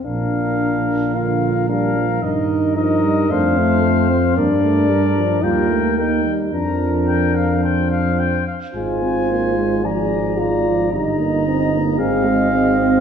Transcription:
X:1
M:4/4
L:1/8
Q:1/4=111
K:Bb
V:1 name="Trumpet"
f4 f2 f2 | e2 e2 f4 | d4 g2 g z | b2 g f g f g f |
[K:Fdor] a4 b2 b2 | b4 f4 |]
V:2 name="Flugelhorn"
B4 B2 B2 | B2 B2 c4 | B4 B2 B z | B4 c3 z |
[K:Fdor] c4 d2 d2 | e4 e4 |]
V:3 name="French horn"
D4 F2 D2 | E2 E2 D A,2 C | D4 F z E2 | D6- D z |
[K:Fdor] F4 A2 F2 | E4 A A,2 C |]
V:4 name="Trombone" clef=bass
z4 D,2 G, F, | E,2 F, G, A,2 C2 | B, A, G, F, G, A, B, G, | F,6- F, z |
[K:Fdor] A, C B, A, F,2 A, F, | G, B, C B, C2 C2 |]
V:5 name="Tuba" clef=bass
B,,,8 | G,,4 F,,4 | G,,4 E,,3 z | F,,6- F,, z |
[K:Fdor] A,,,8 | G,,,4 A,,,4 |]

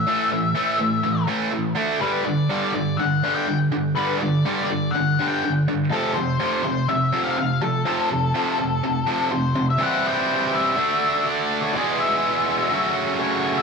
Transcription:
X:1
M:4/4
L:1/16
Q:1/4=123
K:Glyd
V:1 name="Lead electric guitar"
e8- e2 z6 | B2 d4 d2 f3 g2 z3 | B2 d4 d2 f3 g2 z3 | A2 =c4 c2 e3 =f f2 A2- |
A12 =c3 e | f2 g4 e6 d3 c | d2 e8 z2 c3 e |]
V:2 name="Distorted electric guitar" clef=bass
[A,,E,A,]2 [A,,E,]2 [A,,E,A,]2 [A,,E,]2 [A,,E,]2 [A,,E,A,]2 [A,,E,]2 [D,A,D]2 | [G,,D,G,]2 [G,,D,]2 [G,,D,G,]2 [G,,D,]2 [G,,D,]2 [G,,D,G,]2 [G,,D,]2 [G,,D,]2 | [G,,D,G,]2 [G,,D,]2 [G,,D,G,]2 [G,,D,]2 [G,,D,]2 [G,,D,G,]2 [G,,D,]2 [G,,D,]2 | [=F,,=C,=F,]2 [F,,C,]2 [F,,C,F,]2 [F,,C,]2 [F,,C,]2 [F,,C,F,]2 [F,,C,]2 [F,,C,]2 |
[=F,,=C,=F,]2 [F,,C,]2 [F,,C,F,]2 [F,,C,]2 [F,,C,]2 [F,,C,F,]2 [F,,C,]2 [F,,C,]2 | [=C,E,G,=CE]8 [D,A,DF]8 | [E,,B,,E,^G,B,^G]8 [F,,C,F,A,CF]8 |]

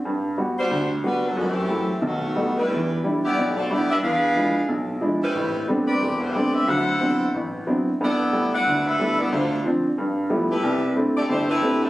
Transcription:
X:1
M:4/4
L:1/8
Q:"Swing" 1/4=181
K:G
V:1 name="Saxophone section"
z3 [G,DFc]2 z [G,DFB] [F,B,DA] | [E,A,CG]4 [^D,A,B,F]3 [G,=DEB]- | [K:Em] [G,DEB]2 z [B,EGd]2 [A,DFc] [B,EGd] [DGBe] | [D^GB=f]4 z3 [=G,CEB]- |
[G,CEB]2 z [CGBd]2 [G,B,Ec] [CGBd] [CGBe] | [EAcf]4 z4 | [B,EAd]3 [EBdf]2 [DABe]2 [B,EAd] | [A,D=Fc]2 z4 z [A,EGB]- |
[A,EGB]2 z [A,EGd] [A,EGc] [A,EGB]2 [F,CEA] |]
V:2 name="Upright piano"
G,,2 [G,B,F] z D,,2 [G,B,F] z | F,,2 [F,A,E] z [B,,,^D,]2 [G,A,B,^D] z | [K:Em] [E,,E,]2 [G,DE] z B,,,2 [G,DE] z | E,,2 [=F,^G,DE] z B,,,2 [F,G,DE] z |
[A,,,A,,]2 [G,A,B,CD] z E,,,2 [G,A,B,CD] z | [D,,F,]2 [F,B,CDE] z A,,,2 [F,B,CDE] z | [G,,B,]2 [G,A,B,E] z D,,2 [G,A,B,E] z | D,,2 [=F,CD] z G,,2 [F,G,A,B,E] z |
C,,2 [A,CDE] z G,,,2 [A,CDE] z |]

